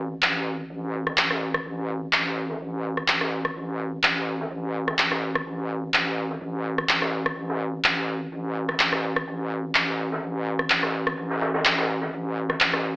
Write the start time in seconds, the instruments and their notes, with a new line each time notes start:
Already playing: wobble bass A1
0.22 clap, closed hi-hat
0.46 closed hi-hat
0.70 closed hi-hat
0.94 closed hi-hat
1.06 cross-stick, snare
1.18 clap, closed hi-hat
1.31 cross-stick, snare
1.41 closed hi-hat
1.54 cross-stick
1.65 closed hi-hat
1.89 closed hi-hat
2.12 clap, open hi-hat
2.26 closed hi-hat
2.36 closed hi-hat
2.50 snare
2.61 closed hi-hat
2.83 closed hi-hat
2.97 cross-stick
3.08 clap, closed hi-hat
3.21 cross-stick, snare
3.32 closed hi-hat
3.45 cross-stick
3.56 closed hi-hat
3.80 closed hi-hat
4.02 clap, closed hi-hat
4.27 closed hi-hat
4.40 snare
4.50 closed hi-hat
4.75 closed hi-hat
4.88 cross-stick, snare
4.98 clap, closed hi-hat
5.12 cross-stick, snare
5.22 closed hi-hat
5.35 cross-stick
5.46 closed hi-hat
5.70 closed hi-hat
5.94 clap, open hi-hat
6.07 closed hi-hat
6.18 closed hi-hat
6.30 snare
6.41 wobble bass A1, closed hi-hat
6.65 closed hi-hat
6.78 cross-stick
6.89 clap, closed hi-hat
7.02 cross-stick, snare
7.13 closed hi-hat
7.26 cross-stick
7.36 closed hi-hat
7.49 snare
7.59 closed hi-hat
7.84 clap, closed hi-hat
8.08 closed hi-hat
8.32 closed hi-hat
8.55 closed hi-hat
8.69 cross-stick, snare
8.80 clap
8.93 cross-stick, snare
9.03 closed hi-hat
9.16 cross-stick
9.27 closed hi-hat
9.50 closed hi-hat
9.74 clap, open hi-hat
9.88 closed hi-hat
9.99 closed hi-hat
10.12 snare
10.22 closed hi-hat
10.46 closed hi-hat
10.59 cross-stick
10.70 clap, closed hi-hat
10.83 cross-stick, snare
10.93 closed hi-hat
11.07 cross-stick
11.17 closed hi-hat
11.30 snare
11.41 snare, closed hi-hat
11.54 snare, closed hi-hat
11.65 snare, clap, closed hi-hat
11.78 snare, closed hi-hat
11.89 closed hi-hat
12.01 snare
12.13 closed hi-hat
12.37 closed hi-hat
12.49 cross-stick, snare
12.60 clap, closed hi-hat
12.73 cross-stick, snare
12.85 closed hi-hat